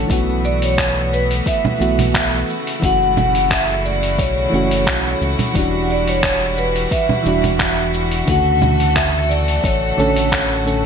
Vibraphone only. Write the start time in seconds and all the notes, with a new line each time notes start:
0.45 D5
0.63 C#5
1.13 B4
1.47 E5
2.84 F#5
3.44 F#5
3.52 E5
3.85 D5
4.19 C#5
5.91 D5
6.09 C#5
6.58 B4
6.92 E5
8.29 F#5
8.96 E5
9.29 D5
9.63 C#5